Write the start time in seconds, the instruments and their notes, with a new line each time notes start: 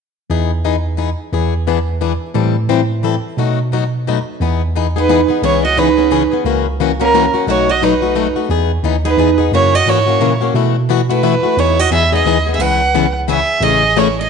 0.30 tine electric piano E2, steel-string acoustic guitar E3 B3 D#4 G#4
0.65 steel-string acoustic guitar E3 B3 D#4 G#4
0.97 steel-string acoustic guitar E3 B3 D#4 G#4
1.32 tine electric piano E2, steel-string acoustic guitar E3 B3 D4 G#4
1.67 steel-string acoustic guitar E3 B3 D4 G#4
2.01 steel-string acoustic guitar E3 B3 D4 G#4
2.34 tine electric piano A2, steel-string acoustic guitar E3 G3 C4 E4 A4
2.69 steel-string acoustic guitar E3 G3 C4 E4 A4
3.03 steel-string acoustic guitar E3 G3 C4 E4 A4
3.37 tine electric piano B2, steel-string acoustic guitar B2 F#3 A3 D#4 F#4
3.72 steel-string acoustic guitar B2 F#3 A3 D#4 F#4
4.07 steel-string acoustic guitar B2 F#3 A3 D#4 F#4
4.40 tine electric piano E2, steel-string acoustic guitar E3 B3 D#4 G#4
4.76 steel-string acoustic guitar E3 B3 D#4 G#4
4.96 steel-string acoustic guitar B3 D#4 G#4, violin B4
5.09 steel-string acoustic guitar E3 B3 D#4 G#4
5.28 steel-string acoustic guitar B3 D#4 G#4
5.42 tine electric piano C#2, steel-string acoustic guitar C#3 E3 B3 C#4 E4 G#4, violin C#5
5.65 steel-string acoustic guitar F#4, violin D#5
5.77 steel-string acoustic guitar C#3 E3 B3 C#4 D#4 G#4, violin B4
5.97 steel-string acoustic guitar B3 C#4 G#4
6.11 steel-string acoustic guitar C#3 E3 B3 C#4 G#4
6.31 steel-string acoustic guitar B3 C#4 G#4
6.44 tine electric piano C#2, steel-string acoustic guitar C#3 E3 A#3 C#4 F#4
6.80 steel-string acoustic guitar C#3 E3 A#3 C#4 F#4
7.00 steel-string acoustic guitar A#3 C#4 F#4, violin A#4
7.14 steel-string acoustic guitar C#3 E3 A#3 C#4 F#4
7.34 steel-string acoustic guitar A#3 C#4 F#4
7.47 tine electric piano B1, steel-string acoustic guitar B2 F#3 A3 D#4 F#4, violin C#5
7.69 steel-string acoustic guitar F#4, violin D#5
7.82 steel-string acoustic guitar B2 F#3 A3 D#4 F#4, violin B4
8.02 steel-string acoustic guitar A3 D#4 F#4
8.15 steel-string acoustic guitar B2 F#3 A3 D#4 F#4
8.36 steel-string acoustic guitar A3 D#4 F#4
8.49 tine electric piano E2, steel-string acoustic guitar E3 B3 D#4 G#4
8.83 tine electric piano D#2, steel-string acoustic guitar E3 B3 D#4 G#4
9.05 steel-string acoustic guitar B3 D#4 G#4, violin B4
9.17 tine electric piano E2, steel-string acoustic guitar E3 B3 D#4 G#4
9.38 steel-string acoustic guitar B3 D#4 G#4
9.52 tine electric piano F#2, steel-string acoustic guitar C#3 E3 A#3 C#4 E4 F#4, violin C#5
9.75 steel-string acoustic guitar F#4, violin D#5
9.86 tine electric piano G#2, steel-string acoustic guitar C#3 E3 A#3 C#4 E4 F#4, violin C#5
10.07 steel-string acoustic guitar A#3 C#4 F#4
10.20 tine electric piano A#2, steel-string acoustic guitar C#3 E3 A#3 C#4 F#4
10.41 steel-string acoustic guitar A#3 C#4 F#4
10.54 tine electric piano B2, steel-string acoustic guitar B2 E3 A3 E4 F#4
10.89 steel-string acoustic guitar B2 E3 A3 E4 F#4
11.09 steel-string acoustic guitar A3 E4 F#4, violin B4
11.23 steel-string acoustic guitar B2 E3 A3 E4 F#4
11.43 steel-string acoustic guitar A3 E4 F#4
11.57 tine electric piano E2, steel-string acoustic guitar E3 B3 D#4 E4 G#4, violin C#5
11.79 steel-string acoustic guitar F#4, violin D#5
11.91 tine electric piano E2, steel-string acoustic guitar E3 B3 D#4 G#4, violin E5
12.12 steel-string acoustic guitar B3 D#4 G#4, violin D#5
12.25 tine electric piano D#2, steel-string acoustic guitar E3 B3 D#4 G#4
12.47 steel-string acoustic guitar B3 D#4 G#4
12.54 steel-string acoustic guitar G#4, violin E5
12.59 tine electric piano C#2, steel-string acoustic guitar C#3 E3 B3 C#4 G#4 B4, violin F#5
12.95 steel-string acoustic guitar C#3 E3 B3 C#4 G#4
13.28 steel-string acoustic guitar C#3 E3 B3 C#4 G#4, violin E5
13.60 tine electric piano A1, steel-string acoustic guitar C#3 E3 A3 C#4 G#4, violin D#5
13.96 steel-string acoustic guitar C#3 E3 A3 C#4 E4 G#4, violin C#5
14.21 steel-string acoustic guitar G#4, violin D#5